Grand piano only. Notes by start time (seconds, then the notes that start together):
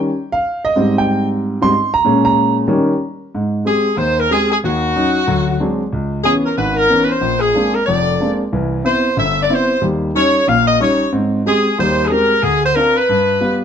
0.32 F5
0.65 D#5
0.76 G#2 G3 C4
0.98 G5
1.61 G#2 G3 C4 C6
1.94 A#5
2.04 A#2 G#3 C#4
2.25 A#5
2.68 D#3 G3 C#4
3.35 G#2
3.65 G#3 C4 G4
3.97 D#2
4.30 G#3 C4 G4
4.64 D#2
4.96 F#3 C#4 D#4
5.27 D2 F#3
5.60 F#3 G#3 C4 D4
5.93 C#2
6.24 E3 B3 C#4
6.58 G#1
6.90 E3 B3 C#4
7.21 A#1
7.54 G#3 A#3 C4 D4
7.88 F1 F2
8.20 G#3 A#3 C4 D4
8.53 C2 E3
8.84 B3 C4 E4
9.17 G1
9.49 B3 C4 E4
9.82 D#2 G3
10.15 G3 C#4 D#4
10.48 A#1 A#2
10.80 G3 C#4 D#4
11.12 G#2 C4
11.46 G#3 C4 G4
11.79 D#2 G3
12.11 G#3 C4 G4
12.43 D2
12.76 C4 D4 F4
13.09 G2
13.41 G3 B3 F4